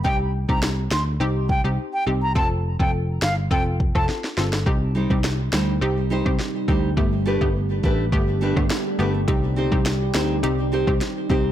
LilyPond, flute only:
\new Staff \with { instrumentName = "Flute" } { \time 4/4 \key c \dorian \tempo 4 = 104 g''16 r8 bes''16 r8 c'''16 r8. g''16 r8 g''16 r16 bes''16 | a''16 r8 g''16 r8 f''16 r16 g''16 r8 a''16 r4 | r1 | r1 |
r1 | }